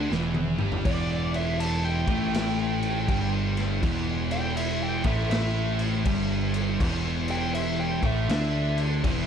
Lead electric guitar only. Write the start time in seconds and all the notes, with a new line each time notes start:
0.86 D5
1.35 E5
1.60 A5
1.85 G5
4.32 G5
4.57 E5
4.83 G5
5.06 E5
5.30 E5
7.31 G5
7.54 E5
7.80 G5
8.06 E5
8.31 E5